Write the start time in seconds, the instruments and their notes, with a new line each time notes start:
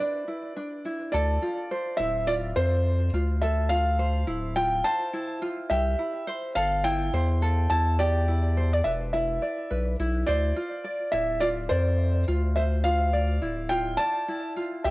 Already playing: ukulele E4 G4 B4
0.00 ukulele D4, felt piano D5
0.28 ukulele E4
0.56 ukulele D4
0.85 ukulele E4
1.12 analog synth bass D2, ukulele A4, felt piano D5
1.42 ukulele F4
1.71 ukulele C5
1.97 analog synth bass D1, ukulele E4, felt piano E5
2.27 ukulele F4, felt piano D5
2.56 analog synth bass F2, felt piano C5, ukulele C5
3.13 analog synth bass D2, ukulele F4
3.42 ukulele A4, felt piano E5
3.69 ukulele F4, felt piano F5
3.99 ukulele C5
4.27 analog synth bass D1, ukulele E4
4.56 ukulele F4, felt piano G5
4.84 ukulele C5, felt piano A5
5.13 ukulele E4
5.42 ukulele F4
5.70 analog synth bass C2, ukulele G4, felt piano E5
5.99 ukulele E4
6.27 ukulele C5
6.55 analog synth bass G1, ukulele A4, felt piano F5
6.84 ukulele E4, felt piano G5
7.13 analog synth bass E2, ukulele C5
7.42 ukulele A4
7.70 analog synth bass E2, ukulele E4, felt piano A5
7.99 ukulele G4, felt piano D5
8.28 ukulele E4
8.57 ukulele C5
8.73 ukulele D5
8.84 analog synth bass E1, ukulele B4, felt piano E5
9.13 ukulele E4, felt piano E5
9.42 ukulele D5
9.71 analog synth bass B1, ukulele B4
10.00 analog synth bass B1, ukulele E4
10.26 analog synth bass D2, ukulele C5, felt piano D5
10.56 ukulele F4
10.84 ukulele D5
11.12 analog synth bass D1, ukulele E4, felt piano E5
11.40 ukulele F4, felt piano D5
11.69 analog synth bass F2, felt piano C5, ukulele D5
12.28 analog synth bass D2, ukulele F4
12.56 ukulele C5, felt piano E5
12.84 ukulele F4, felt piano F5
13.13 ukulele D5
13.42 analog synth bass D1, ukulele E4
13.69 ukulele F4, felt piano G5
13.97 ukulele D5, felt piano A5
14.28 ukulele E4
14.56 ukulele F4
14.84 analog synth bass C2, ukulele G4, felt piano E5